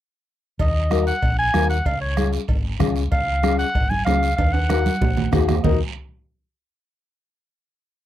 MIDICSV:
0, 0, Header, 1, 6, 480
1, 0, Start_track
1, 0, Key_signature, -6, "minor"
1, 0, Tempo, 315126
1, 906, Time_signature, 4, 2, 24, 8
1, 12268, End_track
2, 0, Start_track
2, 0, Title_t, "Clarinet"
2, 0, Program_c, 0, 71
2, 930, Note_on_c, 0, 75, 90
2, 1589, Note_off_c, 0, 75, 0
2, 1631, Note_on_c, 0, 78, 92
2, 2076, Note_off_c, 0, 78, 0
2, 2117, Note_on_c, 0, 80, 103
2, 2559, Note_off_c, 0, 80, 0
2, 2588, Note_on_c, 0, 78, 91
2, 2836, Note_on_c, 0, 77, 93
2, 2858, Note_off_c, 0, 78, 0
2, 3053, Note_off_c, 0, 77, 0
2, 3063, Note_on_c, 0, 73, 73
2, 3512, Note_off_c, 0, 73, 0
2, 4755, Note_on_c, 0, 77, 100
2, 5424, Note_off_c, 0, 77, 0
2, 5467, Note_on_c, 0, 78, 98
2, 5936, Note_on_c, 0, 80, 99
2, 5959, Note_off_c, 0, 78, 0
2, 6163, Note_off_c, 0, 80, 0
2, 6172, Note_on_c, 0, 77, 101
2, 6629, Note_off_c, 0, 77, 0
2, 6644, Note_on_c, 0, 77, 98
2, 6899, Note_on_c, 0, 78, 85
2, 6922, Note_off_c, 0, 77, 0
2, 8347, Note_off_c, 0, 78, 0
2, 8580, Note_on_c, 0, 75, 83
2, 8810, Note_off_c, 0, 75, 0
2, 12268, End_track
3, 0, Start_track
3, 0, Title_t, "Nylon-string guitar"
3, 0, Program_c, 1, 24
3, 1371, Note_on_c, 1, 63, 71
3, 1378, Note_on_c, 1, 66, 66
3, 1389, Note_on_c, 1, 70, 72
3, 1715, Note_off_c, 1, 63, 0
3, 1720, Note_off_c, 1, 66, 0
3, 1721, Note_off_c, 1, 70, 0
3, 2337, Note_on_c, 1, 63, 71
3, 2343, Note_on_c, 1, 66, 67
3, 2351, Note_on_c, 1, 70, 76
3, 2679, Note_off_c, 1, 63, 0
3, 2682, Note_off_c, 1, 66, 0
3, 2684, Note_off_c, 1, 70, 0
3, 3302, Note_on_c, 1, 61, 69
3, 3312, Note_on_c, 1, 65, 59
3, 3316, Note_on_c, 1, 68, 72
3, 3642, Note_off_c, 1, 61, 0
3, 3647, Note_off_c, 1, 65, 0
3, 3648, Note_off_c, 1, 68, 0
3, 4254, Note_on_c, 1, 61, 86
3, 4259, Note_on_c, 1, 65, 76
3, 4263, Note_on_c, 1, 68, 97
3, 4599, Note_off_c, 1, 61, 0
3, 4600, Note_off_c, 1, 65, 0
3, 4603, Note_off_c, 1, 68, 0
3, 5219, Note_on_c, 1, 61, 74
3, 5230, Note_on_c, 1, 68, 84
3, 5231, Note_on_c, 1, 65, 66
3, 5563, Note_off_c, 1, 61, 0
3, 5566, Note_off_c, 1, 65, 0
3, 5567, Note_off_c, 1, 68, 0
3, 6187, Note_on_c, 1, 61, 70
3, 6191, Note_on_c, 1, 65, 66
3, 6198, Note_on_c, 1, 68, 78
3, 6527, Note_off_c, 1, 61, 0
3, 6527, Note_off_c, 1, 65, 0
3, 6532, Note_off_c, 1, 68, 0
3, 7150, Note_on_c, 1, 63, 71
3, 7156, Note_on_c, 1, 66, 66
3, 7160, Note_on_c, 1, 70, 81
3, 7489, Note_off_c, 1, 63, 0
3, 7491, Note_off_c, 1, 66, 0
3, 7493, Note_off_c, 1, 70, 0
3, 8099, Note_on_c, 1, 63, 88
3, 8110, Note_on_c, 1, 66, 84
3, 8121, Note_on_c, 1, 68, 92
3, 8443, Note_off_c, 1, 63, 0
3, 8449, Note_off_c, 1, 66, 0
3, 8451, Note_off_c, 1, 68, 0
3, 8592, Note_on_c, 1, 63, 73
3, 8601, Note_on_c, 1, 66, 69
3, 8601, Note_on_c, 1, 70, 83
3, 8817, Note_off_c, 1, 70, 0
3, 8818, Note_off_c, 1, 63, 0
3, 8819, Note_off_c, 1, 66, 0
3, 12268, End_track
4, 0, Start_track
4, 0, Title_t, "Fingered electric bass"
4, 0, Program_c, 2, 33
4, 908, Note_on_c, 2, 39, 94
4, 1675, Note_off_c, 2, 39, 0
4, 1868, Note_on_c, 2, 34, 87
4, 2252, Note_off_c, 2, 34, 0
4, 2346, Note_on_c, 2, 39, 95
4, 2731, Note_off_c, 2, 39, 0
4, 2826, Note_on_c, 2, 37, 94
4, 3596, Note_off_c, 2, 37, 0
4, 3785, Note_on_c, 2, 32, 92
4, 4171, Note_off_c, 2, 32, 0
4, 4266, Note_on_c, 2, 37, 95
4, 4652, Note_off_c, 2, 37, 0
4, 4749, Note_on_c, 2, 37, 99
4, 5519, Note_off_c, 2, 37, 0
4, 5717, Note_on_c, 2, 32, 92
4, 6100, Note_off_c, 2, 32, 0
4, 6198, Note_on_c, 2, 37, 95
4, 6580, Note_off_c, 2, 37, 0
4, 6678, Note_on_c, 2, 39, 92
4, 7445, Note_off_c, 2, 39, 0
4, 7637, Note_on_c, 2, 34, 91
4, 8020, Note_off_c, 2, 34, 0
4, 8117, Note_on_c, 2, 39, 93
4, 8500, Note_off_c, 2, 39, 0
4, 8599, Note_on_c, 2, 39, 89
4, 8820, Note_off_c, 2, 39, 0
4, 12268, End_track
5, 0, Start_track
5, 0, Title_t, "Two-headed folk drums"
5, 905, Note_on_c, 9, 36, 82
5, 1058, Note_off_c, 9, 36, 0
5, 1386, Note_on_c, 9, 37, 78
5, 1539, Note_off_c, 9, 37, 0
5, 1865, Note_on_c, 9, 36, 75
5, 2017, Note_off_c, 9, 36, 0
5, 2343, Note_on_c, 9, 37, 77
5, 2495, Note_off_c, 9, 37, 0
5, 2825, Note_on_c, 9, 36, 75
5, 2977, Note_off_c, 9, 36, 0
5, 3306, Note_on_c, 9, 37, 72
5, 3458, Note_off_c, 9, 37, 0
5, 3785, Note_on_c, 9, 36, 80
5, 3937, Note_off_c, 9, 36, 0
5, 4265, Note_on_c, 9, 36, 67
5, 4267, Note_on_c, 9, 37, 75
5, 4418, Note_off_c, 9, 36, 0
5, 4419, Note_off_c, 9, 37, 0
5, 4747, Note_on_c, 9, 36, 84
5, 4899, Note_off_c, 9, 36, 0
5, 5236, Note_on_c, 9, 37, 79
5, 5388, Note_off_c, 9, 37, 0
5, 5711, Note_on_c, 9, 36, 80
5, 5863, Note_off_c, 9, 36, 0
5, 6191, Note_on_c, 9, 37, 74
5, 6343, Note_off_c, 9, 37, 0
5, 6675, Note_on_c, 9, 36, 75
5, 6828, Note_off_c, 9, 36, 0
5, 7154, Note_on_c, 9, 37, 81
5, 7306, Note_off_c, 9, 37, 0
5, 7635, Note_on_c, 9, 36, 77
5, 7788, Note_off_c, 9, 36, 0
5, 8114, Note_on_c, 9, 37, 77
5, 8115, Note_on_c, 9, 36, 67
5, 8266, Note_off_c, 9, 37, 0
5, 8267, Note_off_c, 9, 36, 0
5, 8355, Note_on_c, 9, 37, 72
5, 8507, Note_off_c, 9, 37, 0
5, 8595, Note_on_c, 9, 36, 92
5, 8747, Note_off_c, 9, 36, 0
5, 12268, End_track
6, 0, Start_track
6, 0, Title_t, "Drums"
6, 904, Note_on_c, 9, 74, 66
6, 907, Note_on_c, 9, 56, 99
6, 1056, Note_off_c, 9, 74, 0
6, 1059, Note_off_c, 9, 56, 0
6, 1386, Note_on_c, 9, 73, 69
6, 1387, Note_on_c, 9, 63, 78
6, 1538, Note_off_c, 9, 73, 0
6, 1540, Note_off_c, 9, 63, 0
6, 1629, Note_on_c, 9, 73, 64
6, 1781, Note_off_c, 9, 73, 0
6, 1865, Note_on_c, 9, 56, 80
6, 1867, Note_on_c, 9, 74, 64
6, 2017, Note_off_c, 9, 56, 0
6, 2019, Note_off_c, 9, 74, 0
6, 2347, Note_on_c, 9, 66, 67
6, 2347, Note_on_c, 9, 73, 67
6, 2351, Note_on_c, 9, 63, 74
6, 2499, Note_off_c, 9, 66, 0
6, 2500, Note_off_c, 9, 73, 0
6, 2503, Note_off_c, 9, 63, 0
6, 2587, Note_on_c, 9, 73, 68
6, 2739, Note_off_c, 9, 73, 0
6, 2826, Note_on_c, 9, 74, 68
6, 2834, Note_on_c, 9, 56, 96
6, 2978, Note_off_c, 9, 74, 0
6, 2986, Note_off_c, 9, 56, 0
6, 3304, Note_on_c, 9, 73, 73
6, 3311, Note_on_c, 9, 63, 84
6, 3456, Note_off_c, 9, 73, 0
6, 3464, Note_off_c, 9, 63, 0
6, 3544, Note_on_c, 9, 73, 71
6, 3697, Note_off_c, 9, 73, 0
6, 3779, Note_on_c, 9, 74, 65
6, 3787, Note_on_c, 9, 56, 78
6, 3932, Note_off_c, 9, 74, 0
6, 3939, Note_off_c, 9, 56, 0
6, 4263, Note_on_c, 9, 73, 74
6, 4270, Note_on_c, 9, 63, 79
6, 4270, Note_on_c, 9, 64, 82
6, 4416, Note_off_c, 9, 73, 0
6, 4422, Note_off_c, 9, 63, 0
6, 4422, Note_off_c, 9, 64, 0
6, 4504, Note_on_c, 9, 73, 63
6, 4656, Note_off_c, 9, 73, 0
6, 4746, Note_on_c, 9, 74, 69
6, 4747, Note_on_c, 9, 56, 98
6, 4899, Note_off_c, 9, 56, 0
6, 4899, Note_off_c, 9, 74, 0
6, 5229, Note_on_c, 9, 63, 79
6, 5230, Note_on_c, 9, 73, 69
6, 5381, Note_off_c, 9, 63, 0
6, 5383, Note_off_c, 9, 73, 0
6, 5470, Note_on_c, 9, 73, 66
6, 5623, Note_off_c, 9, 73, 0
6, 5714, Note_on_c, 9, 74, 69
6, 5715, Note_on_c, 9, 56, 80
6, 5866, Note_off_c, 9, 74, 0
6, 5867, Note_off_c, 9, 56, 0
6, 5955, Note_on_c, 9, 63, 64
6, 6108, Note_off_c, 9, 63, 0
6, 6195, Note_on_c, 9, 73, 72
6, 6196, Note_on_c, 9, 63, 84
6, 6199, Note_on_c, 9, 66, 69
6, 6347, Note_off_c, 9, 73, 0
6, 6348, Note_off_c, 9, 63, 0
6, 6352, Note_off_c, 9, 66, 0
6, 6441, Note_on_c, 9, 73, 66
6, 6593, Note_off_c, 9, 73, 0
6, 6677, Note_on_c, 9, 56, 100
6, 6677, Note_on_c, 9, 65, 90
6, 6680, Note_on_c, 9, 74, 66
6, 6830, Note_off_c, 9, 56, 0
6, 6830, Note_off_c, 9, 65, 0
6, 6832, Note_off_c, 9, 74, 0
6, 6915, Note_on_c, 9, 65, 96
6, 7067, Note_off_c, 9, 65, 0
6, 7148, Note_on_c, 9, 65, 89
6, 7159, Note_on_c, 9, 73, 66
6, 7160, Note_on_c, 9, 63, 88
6, 7301, Note_off_c, 9, 65, 0
6, 7311, Note_off_c, 9, 73, 0
6, 7312, Note_off_c, 9, 63, 0
6, 7401, Note_on_c, 9, 73, 67
6, 7403, Note_on_c, 9, 63, 81
6, 7554, Note_off_c, 9, 73, 0
6, 7555, Note_off_c, 9, 63, 0
6, 7639, Note_on_c, 9, 56, 77
6, 7639, Note_on_c, 9, 66, 70
6, 7639, Note_on_c, 9, 74, 65
6, 7644, Note_on_c, 9, 63, 70
6, 7791, Note_off_c, 9, 56, 0
6, 7791, Note_off_c, 9, 66, 0
6, 7792, Note_off_c, 9, 74, 0
6, 7797, Note_off_c, 9, 63, 0
6, 7878, Note_on_c, 9, 64, 66
6, 7879, Note_on_c, 9, 66, 68
6, 8030, Note_off_c, 9, 64, 0
6, 8031, Note_off_c, 9, 66, 0
6, 8112, Note_on_c, 9, 66, 92
6, 8118, Note_on_c, 9, 64, 98
6, 8122, Note_on_c, 9, 73, 69
6, 8265, Note_off_c, 9, 66, 0
6, 8270, Note_off_c, 9, 64, 0
6, 8275, Note_off_c, 9, 73, 0
6, 8357, Note_on_c, 9, 73, 63
6, 8358, Note_on_c, 9, 66, 82
6, 8360, Note_on_c, 9, 64, 81
6, 8510, Note_off_c, 9, 66, 0
6, 8510, Note_off_c, 9, 73, 0
6, 8512, Note_off_c, 9, 64, 0
6, 8589, Note_on_c, 9, 74, 92
6, 8596, Note_on_c, 9, 64, 97
6, 8601, Note_on_c, 9, 66, 97
6, 8741, Note_off_c, 9, 74, 0
6, 8749, Note_off_c, 9, 64, 0
6, 8753, Note_off_c, 9, 66, 0
6, 12268, End_track
0, 0, End_of_file